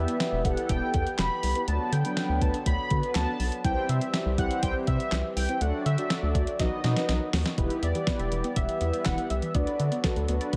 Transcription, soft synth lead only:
0.00 0.47 E5 loud
0.45 0.69 F#5 loud
0.70 1.15 G5 loud
1.19 1.70 B5 loud
1.68 1.94 A5 loud
1.93 2.43 G5 loud
2.42 2.66 A5 loud
2.67 3.12 B5 loud
3.16 3.61 A5 loud
3.65 3.91 G5 loud
3.89 4.38 E5 loud
4.39 4.61 F#5 medium
4.63 4.74 G5 loud
4.87 5.33 E5 loud
5.36 5.63 G5 medium
5.61 5.85 F#5 loud
5.86 6.37 E5 loud
6.35 6.59 D5 medium
6.60 7.30 D#5 medium
7.83 8.58 D5 loud
8.57 9.07 E5 loud
9.06 9.32 F#5 loud
9.30 9.56 E5 loud
9.55 10.06 D5 loud
10.04 10.56 A4 medium

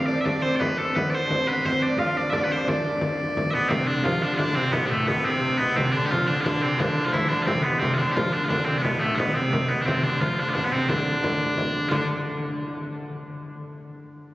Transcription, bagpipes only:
0.06 0.21 D5 medium
0.21 0.25 E5 medium
0.25 0.42 D5 medium
0.42 0.56 C5 medium
0.56 0.60 D5 medium
0.60 0.78 B4 medium
0.78 0.95 A4 medium
0.95 1.10 B4 medium
1.10 1.14 D5 medium
1.14 1.48 C5 medium
1.48 1.66 B4 medium
1.66 1.82 C5 medium
1.82 1.99 D5 medium
1.99 2.17 F5 medium
2.17 2.30 D5 medium
2.30 2.44 D5 medium
2.30 2.34 E5 medium
2.44 2.52 B4 medium
2.52 2.69 C5 medium
2.69 3.51 D5 medium
3.51 3.69 B3 medium
3.51 3.54 E5 medium
3.69 3.87 C4 medium
3.87 4.04 D4 medium
4.04 4.23 F4 medium
4.23 4.34 D4 medium
4.34 4.55 D4 medium
4.34 4.38 F4 medium
4.55 4.72 C4 loud
4.72 4.86 B3 medium
4.86 5.07 A3 medium
4.86 4.90 D4 medium
5.07 5.25 B3 medium
5.25 5.58 C4 medium
5.58 5.76 B3 loud
5.76 5.92 C4 medium
5.92 6.06 D4 medium
6.06 6.11 G4 loud
6.11 6.27 F4 loud
6.27 6.41 D4 medium
6.41 6.62 D4 loud
6.41 6.45 F4 loud
6.62 6.79 C4 loud
6.79 7.05 D4 medium
7.05 7.12 F4 loud
7.12 7.29 E4 medium
7.29 7.43 D4 medium
7.43 7.63 C4 medium
7.43 7.47 F4 medium
7.63 7.79 B3 medium
7.79 7.94 C4 medium
7.94 8.12 D4 medium
7.94 7.98 F4 medium
8.12 8.33 F4 medium
8.12 8.15 G4 medium
8.33 8.45 D4 medium
8.45 8.49 F4 medium
8.49 8.65 D4 medium
8.65 8.78 C4 medium
8.78 8.82 D4 medium
8.82 9.00 B3 medium
9.00 9.15 A3 medium
9.15 9.35 B3 medium
9.15 9.19 D4 medium
9.35 9.69 C4 medium
9.69 9.82 B3 medium
9.82 9.86 D4 medium
9.86 10.03 C4 medium
10.03 10.21 D4 medium
10.21 10.40 F4 medium
10.40 10.49 D4 medium
10.49 10.54 F4 medium
10.54 10.65 D4 medium
10.65 10.72 B3 medium
10.72 10.89 C4 medium
10.89 11.89 D4 medium
11.89 11.93 F4 medium
11.93 12.08 D4 medium

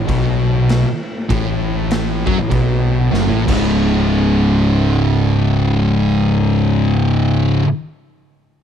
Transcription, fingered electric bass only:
0.09 0.84 B1 medium
1.30 2.23 A1 loud
2.27 2.38 F#2 loud
2.39 2.51 A1 medium
2.51 3.08 B1 medium
3.13 3.29 F#1 loud
3.30 3.46 A1 loud
3.48 7.60 C#1 loud

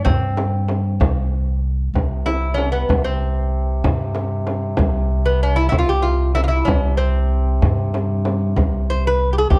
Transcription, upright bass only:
0.06 0.97 G2 medium
1.00 1.91 C2 medium
1.94 2.85 C2 medium
2.89 3.80 C2 medium
3.84 4.75 G2 medium
4.79 5.69 C2 loud
5.73 6.64 C2 medium
6.67 7.58 C2 loud
7.62 8.53 G2 medium
8.57 9.48 C2 medium
9.50 9.59 C2 medium

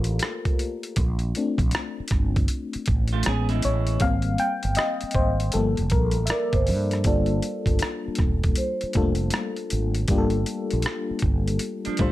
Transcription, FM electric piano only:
0.00 1.58 F4 medium
0.00 0.99 G4 medium
0.00 0.99 A4 medium
0.00 0.98 A#4 medium
1.37 2.46 A3 medium
1.37 2.46 C4 soft
1.37 2.46 D4 medium
3.26 3.80 G#3 medium
3.26 3.80 B3 medium
3.26 3.80 C#4 medium
3.65 3.99 C#5 medium
4.02 4.56 G3 medium
4.02 4.56 A#3 medium
4.02 4.56 C4 medium
4.02 4.41 F5 loud
4.40 4.78 G5 loud
4.77 5.16 D#5 loud
5.15 5.54 C5 medium
5.54 6.63 F3 medium
5.54 6.64 G3 soft
5.54 6.64 A#3 medium
5.54 5.92 A4 medium
5.92 6.25 A#4 medium
6.26 6.30 E5 medium
6.30 7.01 D5 medium
7.05 8.51 G3 medium
7.05 8.52 A#3 medium
7.05 8.52 D4 medium
7.05 8.52 F4 medium
7.05 8.52 A4 medium
8.95 10.05 G3 medium
8.95 9.03 A3 soft
8.95 10.05 D4 medium
8.95 10.05 F4 medium
8.95 10.05 A4 medium
9.02 10.08 A#3 medium
10.09 11.55 G3 medium
10.09 11.55 A#3 medium
10.09 11.56 D4 medium
10.09 11.56 F4 medium
10.09 10.18 G4 medium
10.18 11.60 A4 medium
12.00 12.12 G3 medium
12.00 12.12 A3 medium
12.00 12.12 D4 medium
12.00 12.12 F4 medium
12.00 12.12 C5 medium

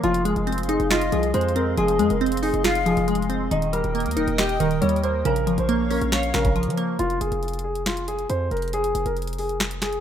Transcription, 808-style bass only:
0.04 0.35 F1 loud
0.36 0.78 F1 loud
0.80 1.11 F1 loud
1.12 1.33 C2 loud
1.34 1.76 F2 loud
1.77 2.01 F1 loud
1.99 2.10 F2 loud
2.10 2.52 F1 loud
2.54 2.95 F1 loud
2.97 3.49 F1 loud
3.51 3.83 D#1 loud
3.84 4.07 D#1 loud
4.06 4.18 D#2 loud
4.17 4.27 D#1 loud
4.27 4.59 D#1 loud
4.60 4.81 D#1 loud
4.82 5.24 D#2 loud
5.25 5.49 A#1 loud
5.47 5.57 G#1 loud
5.58 6.00 A#1 loud
6.01 6.33 A#1 loud
6.34 6.68 A#1 loud
6.67 6.98 F3 loud
6.99 7.20 F1 loud
7.21 7.31 F1 loud
7.32 8.26 F1 loud
8.30 8.50 F2 loud
8.51 8.93 F1 loud
8.95 9.05 F1 loud
9.06 10.00 F1 loud

